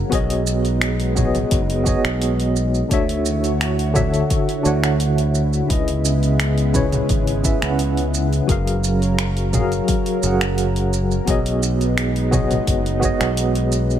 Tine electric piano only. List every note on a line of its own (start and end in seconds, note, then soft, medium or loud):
0.00 0.14 F#3 medium
0.00 0.11 F#4 medium
0.00 0.12 G#4 medium
0.00 0.14 A#4 medium
0.00 0.14 F5 loud
0.00 0.13 F#5 medium
0.09 1.11 B3 medium
0.09 1.12 F#4 medium
0.09 1.13 G#4 medium
0.14 1.13 C#5 medium
0.14 1.14 D#5 loud
1.15 1.82 B3 medium
1.15 1.82 F#4 medium
1.15 1.82 G#4 medium
1.15 1.83 C#5 medium
1.15 1.83 D#5 loud
1.84 2.86 B3 loud
1.84 2.86 F#4 medium
1.84 2.87 G#4 medium
1.84 2.88 C#5 medium
1.89 2.88 D#5 loud
2.88 3.90 D3 medium
2.88 3.91 D4 medium
2.88 3.91 F#4 medium
2.88 3.92 C#5 medium
2.94 3.93 E5 loud
3.94 4.11 D3 medium
3.94 4.12 D4 medium
3.94 4.12 F#4 medium
3.94 4.12 C#5 medium
3.94 4.13 E5 loud
4.62 5.64 D3 medium
4.62 5.65 D4 medium
4.62 5.66 F#4 medium
4.62 5.66 C#5 medium
4.67 5.67 F#5 medium
5.67 6.69 C#3 medium
5.67 6.70 C#4 medium
5.67 6.70 E4 medium
5.71 6.71 B4 medium
5.71 6.72 D#5 medium
6.73 7.39 C#3 medium
6.73 7.40 C#4 medium
6.73 7.40 E4 medium
6.73 7.40 B4 medium
6.73 7.41 C#5 loud
7.42 7.57 C#3 medium
7.42 7.58 C#4 medium
7.42 7.58 E4 medium
7.42 7.58 B4 medium
7.42 7.59 E5 medium
7.60 8.43 C#3 medium
7.60 8.44 C#4 medium
7.60 8.45 E4 medium
7.64 8.46 B4 medium
7.64 8.46 F#5 medium
8.46 9.48 F#3 medium
8.46 9.49 F#4 medium
8.46 9.50 G#4 medium
8.46 9.50 A#4 medium
8.52 9.51 F5 medium
9.52 9.70 F#3 medium
9.52 9.70 F#4 medium
9.52 9.71 G#4 medium
9.52 9.71 A#4 medium
9.52 9.71 F5 loud
10.22 11.23 F#3 medium
10.22 11.24 F#4 medium
10.22 11.24 G#4 medium
10.22 11.25 A#4 medium
10.27 11.26 F#5 medium
11.25 12.27 B3 medium
11.25 12.28 F#4 medium
11.25 12.28 G#4 medium
11.29 12.29 C#5 medium
11.29 12.30 D#5 medium
12.31 12.98 B3 loud
12.31 12.98 F#4 medium
12.31 12.98 G#4 medium
12.31 12.99 C#5 medium
12.31 12.99 D#5 loud
13.00 13.99 B3 loud
13.00 13.99 F#4 medium
13.00 13.99 G#4 medium
13.00 13.99 C#5 medium
13.05 13.99 D#5 loud